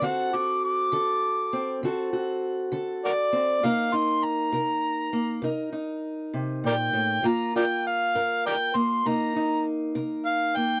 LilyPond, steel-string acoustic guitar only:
\new Staff \with { instrumentName = "Steel-string acoustic guitar" } { \time 12/8 \key c \dorian \tempo 4. = 67 << { <c' fis' a'>8 fis'4 a'4 c'8 <c' fis' a'>8 fis'4 a'4 c'8 | <bes ees' bes'>8 ees'4 bes'4 bes8 <ees' bes'>8 ees'2~ ees'8 | <bes f' bes'>8 f'4 bes'4 bes8 <bes ees' bes'>8 ees'4 bes'4 bes8 | } \\ { d4 r8 d4 r8 d4 r8 d4 r8 | c4 r8 c4 r8 c4 r8 c8 bes,8 a,8 | g,4 r8 g,4 r8 c4 r8 c4 r8 | } >> }